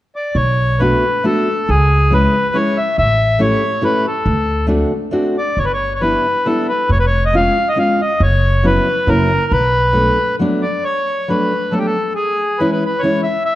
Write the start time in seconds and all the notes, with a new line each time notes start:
0.16 D5
0.35 B1 C#5
0.79 A3 B3 D4 F#4 B4
1.24 A3 B3 D4 F#4 A4
1.69 C#2 G#4
2.11 G#3 C#4 E4 G#4 B4
2.53 G#3 C#4 E4 G#4 C#5
2.77 E5
2.98 A1 E5
3.39 A3 C#4 E4 G4 C#5
3.81 A3 C#4 E4 G4 B4
4.07 A4
4.26 D2
4.67 A3 C4 D4 F#4
5.11 A3 C4 D4 F#4
5.38 D5
5.57 G1 C#5
5.65 B4
5.73 C#5
5.95 C#5
6.01 G3 B3 D4 E4 B4
6.46 G3 B3 D4 E4 A4
6.69 B4
6.89 F1 C#5
7.00 B4
7.06 C#5
7.26 D#5
7.33 G#3 B3 C#4 F4 F5
7.69 D#5
7.76 G#3 B3 C#4 F4 F5
8.01 D#5
8.20 F#1 C#5
8.63 F#3 B3 C#4 E4 B4
9.07 F#1 F#3 A#3 C#4 E4 A#4
9.51 B1 B4
9.93 F#3 A3 B3 D4
10.39 F#3 A3 B3 D4
10.62 D5
10.84 C#5
11.28 F#3 A3 B3 D4 B4
11.71 F#3 A3 B3 D4 A4
11.78 G4
11.86 A4
12.15 G#4
12.59 E3 G#3 C#4 E4 B4
12.72 B4
12.86 B4
12.99 E3 C#5
13.04 G#3 C#4 E4
13.23 E5
13.45 E5